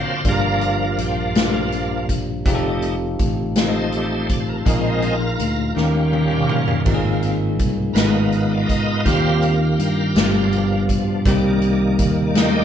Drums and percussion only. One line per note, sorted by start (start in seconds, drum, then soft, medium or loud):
0.25 kick medium
0.25 closed hi-hat medium
0.61 closed hi-hat soft
0.98 closed hi-hat medium
1.35 snare loud
1.35 closed hi-hat medium
1.72 closed hi-hat soft
2.09 kick medium
2.09 closed hi-hat medium
2.46 kick loud
2.46 closed hi-hat medium
2.82 closed hi-hat soft
3.19 kick medium
3.19 closed hi-hat medium
3.55 snare loud
3.55 closed hi-hat medium
3.92 closed hi-hat soft
4.29 kick medium
4.29 closed hi-hat medium
4.66 kick medium
4.66 closed hi-hat medium
5.02 closed hi-hat soft
5.39 closed hi-hat medium
5.77 snare soft
6.13 high tom medium
6.31 mid tom medium
6.49 mid tom medium
6.67 floor tom medium
6.86 kick medium
6.86 crash medium
7.22 closed hi-hat soft
7.59 kick medium
7.59 closed hi-hat medium
7.95 snare medium
7.95 closed hi-hat medium
8.32 closed hi-hat soft
8.69 kick medium
8.69 closed hi-hat medium
9.06 kick medium
9.06 closed hi-hat medium
9.42 closed hi-hat soft
9.79 closed hi-hat medium
10.16 snare loud
10.16 closed hi-hat medium
10.52 closed hi-hat soft
10.89 kick medium
10.89 closed hi-hat medium
11.25 kick medium
11.25 closed hi-hat medium
11.62 closed hi-hat soft
11.99 kick medium
11.99 closed hi-hat medium
12.35 snare loud
12.35 closed hi-hat medium